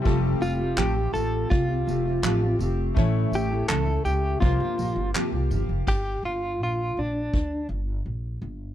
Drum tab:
CC |--------|--------|x-------|
TB |-x-x-x-x|-x-x-x-x|--------|
CP |--x---x-|--x---x-|--------|
BD |o---o---|o---o---|o---o---|